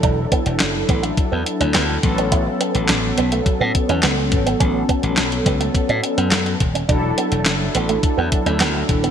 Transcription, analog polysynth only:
X:1
M:4/4
L:1/8
Q:1/4=105
K:A
V:1 name="Analog polysynth"
[F,DEA]6- [F,DEA] [F,B,CA]- | [F,B,CA]8- | [F,B,CA]6- [F,B,CA] z | [F,DEA]8 |]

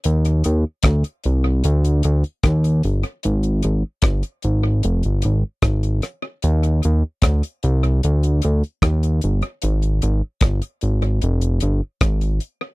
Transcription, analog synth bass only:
X:1
M:4/4
L:1/16
Q:1/4=75
K:Eb
V:1 name="Analog synth bass" clef=bass
E,,2 E,, z D,, z C,,2 D,,2 D,, z E,,2 G,,, z | A,,,2 A,,, z G,,, z A,,,2 F,,, G,,, A,,, z A,,,2 z2 | E,,2 E,, z D,, z C,,2 D,,2 D,, z E,,2 G,,, z | A,,,2 A,,, z G,,, z A,,,2 F,,,2 G,,, z A,,,2 z2 |]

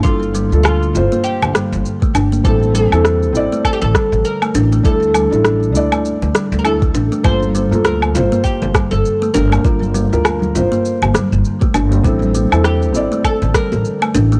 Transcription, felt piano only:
X:1
M:4/4
L:1/16
Q:"Swing 16ths" 1/4=100
K:Gdor
V:1 name="Felt piano"
[FA]3 [FA]3 [Fc]8- [Fc]2 | [CEA]3 [CEA]3 [CEd]8- [CEd]2 | [DEA]3 [DEA]3 [DEd]6 [DEA]4 | [B,FA]3 [B,FA]3 [Fc]8- [Fc]2 |
[FB]3 [FB]3 [Fc]8- [Fc]2 | [CEA]3 [CEA]3 [CEd]8- [CEd]2 |]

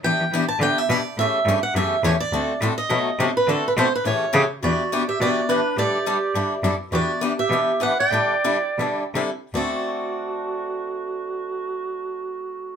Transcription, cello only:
X:1
M:4/4
L:1/8
Q:"Swing" 1/4=209
K:Dmix
V:1 name="Cello" clef=bass
E, E, E,2 D,2 B,,2 | A,,2 G,,2 F,,2 E,,2 | D,,2 A,,2 B,,2 C,2 | D,2 B,,2 A,,2 ^C,2 |
E,,4 B,,4 | A,,4 G,,2 F,,2 | E,,4 B,,4 | A,,4 B,,2 C,2 |
D,,8- | D,,8 |]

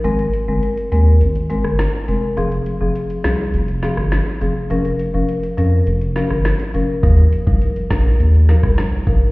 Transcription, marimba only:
X:1
M:4/4
L:1/16
Q:1/4=103
K:Fm
V:1 name="Marimba"
[A,CB]3 [A,CB] z2 [A,CB] z3 [A,CB] z3 [A,CB]2 | [F,CA]3 [F,CA] z2 [F,CA] z3 [F,CA] z3 [F,CA]2 | [F,DB]3 [F,DB] z2 [F,DB] z3 [F,DB] z3 [F,DB]2 | [F,EB]3 [F,EB] z2 [F,EB] z3 [F,EB] z3 [F,EB]2 |]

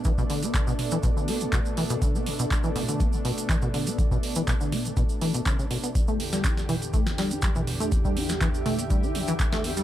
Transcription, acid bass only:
X:1
M:4/4
L:1/16
Q:1/4=122
K:Bm
V:1 name="Acid bass" clef=bass
E, B,, D, B, B,, B,, z E, B,, D, B, B,, B,, z E, B,, | D, B, B,, B,, z E, B,, D, B, B,, B,, z E, B,, D, B, | B,, B,, z E, B,, D, B, B,, B,, z E, B,, C, C, B,, B, | z A, B, G, E E, E, z A, B, G, E E, E, z A, |
B, G, E E, E, z A, B, G, E E, E, z A, B, G, |]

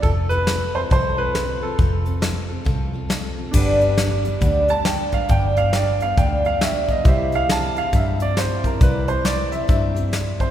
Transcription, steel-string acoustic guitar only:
X:1
M:4/4
L:1/8
Q:"Swing" 1/4=137
K:Gmix
V:1 name="Steel-string acoustic guitar"
[F,CFA] [CFA] [F,CFA] [CFA] [F,CFA] [CFA] [F,CFA] [CFA] | [F,CFA] [CFA] [F,CFA] [CFA] [F,CFA] [CFA] [F,CFA] [CFA] | [G,,D,G,B,DG] [G,B,DG] [G,B,DG] [G,B,DG] [G,,D,G,B,DG] [G,B,DG] [G,B,DG] [G,B,DG] | [G,,D,G,B,DG] [G,B,DG] [G,B,DG] [G,B,DG] [G,,D,G,B,DG] [G,B,DG] [G,B,DG] [G,B,DG] |
[C,G,CEG] [CEG] [G,CEG] [CEG] [C,G,CEG] [CEG] [G,CEG] [CEG] | [C,G,CEG] [CEG] [G,CEG] [CEG] [C,G,CEG] [CEG] [G,CEG] [CEG] |]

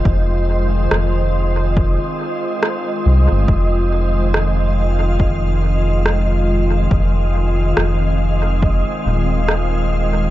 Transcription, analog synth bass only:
X:1
M:4/4
L:1/16
Q:"Swing 16ths" 1/4=70
K:Fm
V:1 name="Analog synth bass" clef=bass
F,,,4 F,,,4- F,,, z4 z C,, G,,, | F,,,16 | F,,,4 F,,,4- F,,, z E,,,6 |]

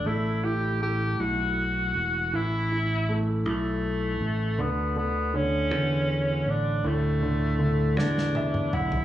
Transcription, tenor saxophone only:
X:1
M:6/8
L:1/8
Q:3/8=53
K:A
V:1 name="Tenor saxophone"
E =G G F3 | E2 z A,3 | B, B, C3 D | A,3 D2 E |]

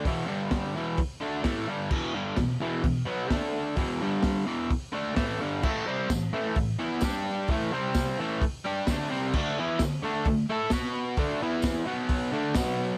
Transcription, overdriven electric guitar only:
X:1
M:4/4
L:1/8
Q:1/4=130
K:A
V:1 name="Overdriven electric guitar" clef=bass
[E,,B,,E,] [=G,,D,=G,]2 [E,,B,,E,] z [D,A,D] [A,,E,A,] [G,,D,G,] | [E,,B,,E,] [=G,,D,=G,] [E,,B,,] [E,,B,,E,] [E,,B,,] [B,,F,B,] [D,A,D]2 | [E,,B,,E,] [=G,,D,=G,]2 [E,,B,,E,] z [D,A,D] [A,,E,A,] [G,,D,G,] | [A,,E,A,] [=C,=G,=C] [A,,E,] [A,,E,A,] [A,,E,] [E,B,E] [G,D=G]2 |
[A,,E,A,] [=C,=G,=C]2 [A,,E,A,] z [G,D=G] [D,A,D] [C,G,C] | [D,A,D] [E,B,E] [D,A,] [D,A,D] [D,A,] [A,EA] [B,FB]2 | [D,A,D] [E,B,E]2 [B,,F,B,]2 [D,A,D] [B,,F,B,]2 |]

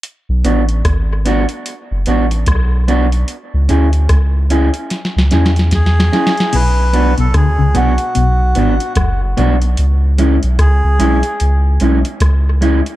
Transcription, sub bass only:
X:1
M:4/4
L:1/16
Q:"Swing 16ths" 1/4=74
K:Bdor
V:1 name="Sub bass" clef=bass
z B,,, A,,,2 G,,,3 z2 F,,, A,,,2 B,,,4 | z C,, D,,2 C,,3 z2 C,, E,,2 E,,2 z2 | B,,,3 B,,, D,, C,, B,,, z B,,,2 G,,, z F,,,2 B,,,2 | C,,3 B,,, C,, C,, B,,, z C,,2 B,,, z C,,3 z |]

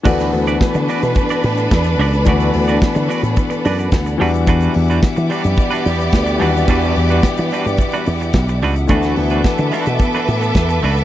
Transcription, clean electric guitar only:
X:1
M:4/4
L:1/16
Q:1/4=109
K:D
V:1 name="Clean electric guitar"
[DFBd]2 z [DFBd] z2 [DFBd] z2 [DFBd] z4 [DFBd] z | [DFBd]2 z [DFBd] z2 [DFBd] z3 [DFBd] [DFBd] z2 [G,DFB] z | [G,DFB]2 z [G,DFB] z2 [G,DFB] z2 [G,DFB] z4 [G,DFB] z | [G,DFB]2 z [G,DFB] z2 [G,DFB] z2 [G,DFB] z4 [G,DFB] z |
[A,DFB]2 z [A,DFB] z2 [A,DFB] z2 [A,DFB] z4 [A,DFB] z |]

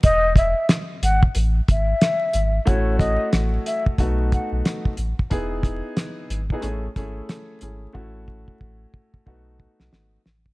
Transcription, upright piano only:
X:1
M:4/4
L:1/16
Q:"Swing 16ths" 1/4=91
K:E
V:1 name="Upright piano"
z16 | [A,CEF]8 [A,B,DF]6 z2 | [B,DEG]6 z [B,DEG] [A,CEG] z [A,CEG]4 [A,CEG]2 | [A,CEF]8 [A,B,DF]6 z2 |]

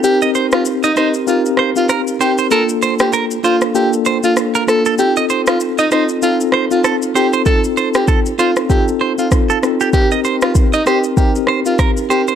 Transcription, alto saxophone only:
X:1
M:4/4
L:1/16
Q:"Swing 16ths" 1/4=97
K:Cdor
V:1 name="Alto saxophone"
G z2 F z E E z F z2 F z2 G z | A z2 G z2 F z G z2 F z2 A z | G z2 F z E E z F z2 F z2 G z | A z2 G z2 F z G z2 F z4 |
G z2 F z E G z G z2 F z2 G z |]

